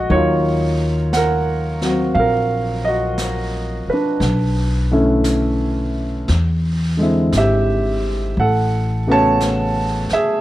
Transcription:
Already playing: D3 G#3 A#3 F#4 D#5
0.10 D#2 D#3 F#3 C#5, brush sweep
0.15 F4
1.13 A#4 F#5, brush sweep, snare, hi-hat pedal
1.82 F#3 C4 F#4, snare
2.15 A#1 F5, brush sweep
2.19 A#4
2.85 F#4 D#5
3.18 brush sweep, snare, hi-hat pedal
3.88 B4, muted upright bass stroke
3.94 D4
4.20 B1, brush sweep, snare
4.91 D3 A3 C#4 E4
5.24 brush sweep, snare, hi-hat pedal
6.28 E2, brush sweep, snare
6.97 D3 G#3 C4
7.02 E4
7.33 G#1, brush sweep, snare, hi-hat pedal
7.37 G4 E5
8.37 A1 A4 F#5, brush sweep
9.07 C#3 A3 B3 F#4
9.12 C#5 A5
9.40 brush sweep, snare, hi-hat pedal
10.09 muted upright bass stroke, snare
10.13 G#4 E5

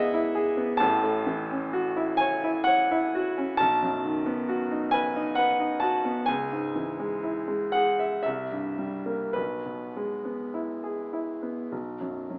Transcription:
Already playing: G#1 G#2 E3 G#3 B3 E4 G#4 D#5 E5 F#5
0.14 E4
0.35 G#4
0.57 B3
0.77 A1 A2 A5
1.04 A3
1.27 E3
1.51 C#4
1.73 F#4
1.97 E4
2.17 C#5 G#5
2.44 E4
2.64 C#5 F#5
2.91 E4
3.15 F#4
3.38 C#4
3.57 B1 A5
3.83 F#2
4.04 D#3
4.26 B3
4.49 F#4
4.71 D#4
4.91 B4 G#5
5.16 D#4
5.35 B4 F#5
5.60 D#4
5.80 F#4 A5
6.05 B3
6.26 C#2 G#5
6.52 G#2
6.75 E3
6.99 G#3
7.23 E4
7.48 G#3
7.72 G#4 F#5
7.99 E5
8.23 C2 E5
8.52 G2
8.78 G3
9.06 A#3
9.33 B1 B4
9.66 B2
9.96 G#3
10.25 B3
10.54 E4
10.84 G#4
11.13 E4
11.42 B3
11.72 B1
12.01 F#2
12.30 F#3

